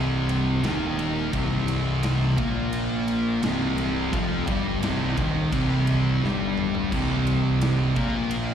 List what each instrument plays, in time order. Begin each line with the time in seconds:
Already playing: fingered electric bass C1, distorted electric guitar C2 C3
0.29 ride
0.63 fingered electric bass D#1, distorted electric guitar D#2 D#3, snare, ride
0.99 ride
1.17 snare
1.33 fingered electric bass C1, distorted electric guitar C2 C3, kick, ride
1.68 ride
2.03 snare, ride
2.38 fingered electric bass A#1, distorted electric guitar A#2 A#3, kick, ride
2.73 ride
3.08 ride
3.43 fingered electric bass C1, distorted electric guitar C2 C3, snare, ride
3.78 ride
4.13 fingered electric bass F1, distorted electric guitar F2 F3, kick, ride
4.47 fingered electric bass G1, distorted electric guitar G2 G3, kick, ride
4.82 fingered electric bass C1, distorted electric guitar C2 C3, snare, ride
5.17 fingered electric bass D#1, distorted electric guitar D#2 D#3, kick, ride
5.52 fingered electric bass C1, distorted electric guitar C2 C3, kick, ride
5.87 ride
6.22 fingered electric bass G1, distorted electric guitar G2 G3, snare
6.58 mid tom
6.75 floor tom
6.92 fingered electric bass C1, distorted electric guitar C2 C3, kick, crash
7.27 ride
7.61 snare, ride
7.96 fingered electric bass A#1, distorted electric guitar A#2 A#3, kick, ride
8.31 ride